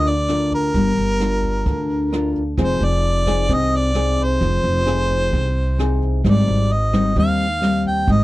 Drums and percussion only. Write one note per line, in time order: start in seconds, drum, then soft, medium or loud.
0.05 closed hi-hat soft
0.28 cross-stick medium
0.28 closed hi-hat soft
0.51 kick soft
0.51 closed hi-hat soft
0.74 kick medium
0.74 closed hi-hat soft
1.20 cross-stick medium
1.20 closed hi-hat soft
1.43 kick soft
1.43 closed hi-hat soft
1.66 kick medium
1.66 closed hi-hat soft
1.90 closed hi-hat soft
2.12 cross-stick medium
2.12 closed hi-hat soft
2.35 kick soft
2.35 closed hi-hat soft
2.57 kick medium
2.57 cross-stick medium
2.57 closed hi-hat soft
2.81 closed hi-hat soft
3.03 closed hi-hat soft
3.26 kick soft
3.26 cross-stick medium
3.26 closed hi-hat soft
3.49 kick medium
3.49 closed hi-hat soft
3.71 closed hi-hat soft
3.94 cross-stick medium
3.94 closed hi-hat soft
4.18 kick soft
4.18 closed hi-hat soft
4.41 kick medium
4.41 closed hi-hat soft
4.64 closed hi-hat soft
4.87 cross-stick medium
4.87 closed hi-hat soft
5.10 kick soft
5.10 closed hi-hat soft
5.33 kick medium
5.33 closed hi-hat soft
5.56 closed hi-hat soft
5.79 cross-stick medium
5.79 closed hi-hat soft
6.02 kick soft
6.02 closed hi-hat soft
6.25 kick medium
6.25 cross-stick medium
6.25 closed hi-hat soft
6.47 closed hi-hat soft
6.70 closed hi-hat soft
6.93 kick soft
6.93 cross-stick medium
6.93 closed hi-hat soft
7.16 kick medium
7.16 closed hi-hat soft
7.62 cross-stick medium
7.62 closed hi-hat soft
7.85 kick soft
7.85 closed hi-hat soft
8.07 kick medium
8.07 closed hi-hat soft